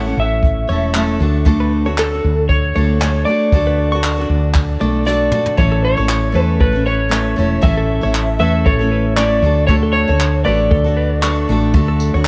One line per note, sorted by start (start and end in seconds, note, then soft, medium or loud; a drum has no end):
0.00 0.13 A1 medium
0.00 0.15 C#5 medium
0.00 0.19 F#5 loud
0.06 0.69 A3 soft
0.06 0.69 C#4 soft
0.06 0.70 E4 soft
0.06 0.72 A4 soft
0.17 0.65 A1 medium
0.17 1.18 E5 medium
0.43 kick medium
0.69 1.17 E1 medium
0.69 0.94 A3 soft
0.69 0.95 C#4 medium
0.69 0.96 E4 medium
0.69 0.97 A4 medium
0.69 0.94 C#5 medium
0.94 1.19 A3 medium
0.94 1.21 C#4 medium
0.94 1.22 E4 medium
0.94 1.22 A4 medium
0.94 clap loud
1.20 2.20 D2 medium
1.20 1.45 A3 medium
1.20 1.45 D4 medium
1.20 1.46 F#4 medium
1.20 1.46 A4 medium
1.45 1.86 D3 medium
1.45 1.86 A3 medium
1.45 1.86 D4 medium
1.45 1.86 F#4 medium
1.45 1.84 A4 medium
1.45 kick medium
1.60 1.71 B4 medium
1.85 2.13 D4 soft
1.85 2.12 F#4 soft
1.85 2.11 A4 soft
1.85 2.21 C#5 medium
1.98 2.46 A4 medium
1.98 clap medium
2.12 2.75 D4 soft
2.12 2.76 F#4 soft
2.12 2.78 A4 medium
2.24 2.72 D2 medium
2.49 3.22 C#5 medium
2.49 kick medium
2.75 3.23 D2 medium
2.75 2.98 A3 soft
2.75 3.00 D4 medium
2.75 3.01 F#4 medium
2.75 3.01 A4 medium
2.75 3.00 C#5 medium
3.00 3.25 A3 soft
3.00 3.26 D4 medium
3.00 3.27 F#4 soft
3.00 3.28 A4 medium
3.00 clap loud
3.25 3.52 A3 medium
3.25 3.53 D4 soft
3.25 3.53 F#4 medium
3.25 5.02 D5 medium
3.30 3.53 A4 medium
3.52 4.26 D2 medium
3.52 3.92 D3 medium
3.52 3.92 A3 medium
3.52 3.93 D4 medium
3.52 3.93 F#4 medium
3.52 3.92 A4 medium
3.52 kick medium
3.67 3.78 B4 medium
3.92 4.18 F#4 soft
3.92 4.17 A4 medium
3.92 4.27 C#6 medium
3.96 4.20 D4 soft
4.04 clap loud
4.18 4.80 D4 soft
4.18 4.82 F#4 soft
4.18 4.83 A4 medium
4.30 4.77 D2 medium
4.54 kick medium
4.54 clap medium
4.81 5.28 B1 medium
4.81 5.04 A3 medium
4.81 5.06 D4 medium
4.81 5.06 F#4 medium
4.81 5.08 A4 medium
4.81 5.05 D5 medium
5.05 5.30 A3 medium
5.05 5.32 D4 medium
5.05 5.33 F#4 medium
5.05 5.33 A4 medium
5.05 5.58 D5 medium
5.05 snare medium
5.32 5.57 A3 medium
5.32 5.58 D4 medium
5.32 5.59 F#4 medium
5.32 5.59 A4 medium
5.32 mid tom medium
5.46 floor tom medium
5.57 5.94 A1 medium
5.57 5.97 A2 medium
5.57 5.98 E3 medium
5.57 5.98 A3 medium
5.57 5.98 C#4 medium
5.57 5.97 E4 medium
5.57 5.96 A4 medium
5.57 5.83 C#5 medium
5.57 kick medium
5.72 5.83 A4 medium
5.85 6.43 C#5 medium
5.97 6.32 A1 medium
5.97 6.31 A3 soft
5.97 6.33 C#4 soft
5.97 6.33 E4 soft
5.97 6.34 A4 soft
5.97 6.22 C#5 medium
6.09 clap medium
6.32 6.59 E2 medium
6.32 6.73 A3 medium
6.32 6.74 C#4 medium
6.32 6.73 E4 medium
6.32 6.71 A4 medium
6.32 6.49 B4 medium
6.43 6.60 B4 medium
6.60 7.34 A1 medium
6.60 6.86 A4 medium
6.60 6.86 B4 medium
6.60 kick loud
6.73 7.08 A3 soft
6.73 7.10 C#4 soft
6.73 7.11 E4 medium
6.73 7.11 A4 medium
6.86 7.00 B4 medium
6.86 7.66 C#5 medium
7.09 7.35 A3 medium
7.09 7.37 C#4 soft
7.09 7.37 E4 medium
7.09 7.50 C#5 medium
7.09 clap loud
7.13 7.38 A4 medium
7.36 7.62 E1 medium
7.36 7.62 A3 medium
7.36 7.62 C#4 soft
7.36 7.63 E4 medium
7.36 7.63 A4 medium
7.61 8.00 A1 medium
7.61 8.02 A2 medium
7.61 8.03 E3 medium
7.61 8.03 A3 medium
7.61 8.03 C#4 medium
7.61 8.02 E4 medium
7.61 8.00 A4 medium
7.61 8.36 E5 loud
7.61 kick loud
7.77 7.89 A4 medium
8.01 8.38 A1 medium
8.01 8.38 A3 soft
8.01 8.39 C#4 soft
8.01 8.40 E4 soft
8.01 8.40 A4 medium
8.01 8.28 C#5 medium
8.15 clap loud
8.39 8.67 E2 medium
8.39 8.80 A3 medium
8.39 8.80 C#4 medium
8.39 8.80 E4 medium
8.39 8.78 A4 medium
8.39 8.54 B4 medium
8.39 8.67 E5 medium
8.66 9.39 A1 loud
8.66 8.91 A4 medium
8.66 9.16 C#5 medium
8.66 kick medium
8.79 9.16 A3 soft
8.79 9.17 C#4 medium
8.79 9.18 E4 medium
8.79 9.17 A4 medium
8.91 9.05 B4 medium
9.17 9.41 A3 soft
9.17 9.43 C#4 medium
9.17 9.44 E4 medium
9.17 9.65 D5 medium
9.17 9.55 C#6 medium
9.17 clap loud
9.21 9.45 A4 medium
9.42 10.04 D2 medium
9.42 9.68 A3 medium
9.42 9.69 D4 medium
9.42 9.68 F#4 medium
9.42 9.70 A4 medium
9.67 10.08 D3 medium
9.67 10.09 A3 medium
9.67 10.09 D4 medium
9.67 10.08 F#4 medium
9.67 10.06 A4 medium
9.67 9.74 C#5 medium
9.67 kick loud
9.83 9.94 A4 medium
9.93 10.44 C#5 medium
10.08 10.43 D2 medium
10.08 10.44 D4 soft
10.08 10.46 F#4 soft
10.08 10.45 A4 medium
10.08 10.33 C#5 medium
10.20 clap loud
10.44 10.70 A1 medium
10.44 10.85 A3 medium
10.44 10.86 D4 medium
10.44 10.85 F#4 medium
10.44 10.83 A4 medium
10.44 10.59 B4 medium
10.44 12.28 D5 medium
10.71 11.45 D2 loud
10.71 10.96 A4 medium
10.71 kick loud
10.84 11.22 D4 medium
10.84 11.23 F#4 medium
10.84 11.22 A4 medium
10.97 11.10 B4 medium
11.22 11.48 A3 medium
11.22 11.49 D4 medium
11.22 11.50 F#4 medium
11.22 11.50 A4 medium
11.22 11.60 C#6 medium
11.22 clap loud
11.49 11.73 A1 medium
11.49 11.73 A3 medium
11.49 11.74 D4 medium
11.49 11.74 F#4 medium
11.49 11.74 A4 medium
11.74 12.11 D2 loud
11.74 12.14 D3 loud
11.74 12.14 A3 medium
11.74 12.14 D4 medium
11.74 12.15 F#4 medium
11.74 12.13 A4 medium
11.74 kick loud
11.88 11.99 A4 medium
12.00 tambourine medium
12.14 12.28 D2 medium
12.14 12.28 D4 soft
12.14 12.28 F#4 soft
12.14 12.28 A4 medium
12.14 12.28 C#5 medium